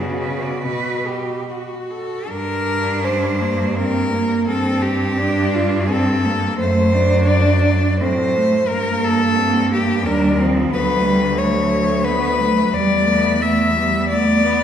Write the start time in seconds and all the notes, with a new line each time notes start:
Already playing: B2 C#3 F#4
0.02 F#4
0.22 B4
0.44 D5
0.62 B2 B4
1.07 G4
1.50 F#4
1.91 A4
2.28 G2 D4 A#4
3.04 G3 C5
3.41 A#3
3.75 A#3 C4 A#4
4.11 A#3
4.46 G2 C4 A4
4.82 G4
5.17 D4
5.55 F4
5.89 C4 A4
6.25 A#3
6.59 F#2 A3 C5
6.94 A3 D4
7.28 F#3 D5
8.00 A2 F#3 C4 C5
8.36 A3
8.68 G2 A#3 A#4
9.04 A4
9.36 C4
9.71 A#3 G4
10.05 D#2 G3 D4 A#4
10.38 F3 C4
10.71 D2 F#3 B3 B4
11.04 G3
11.37 F#3 A3 C#5
12.04 B3 B4
12.40 F#3 A3
12.73 E2 G3 D5
13.07 A3 B3
13.41 A3 B3 E5
13.76 G3
14.10 A3 B3 D5
14.45 B3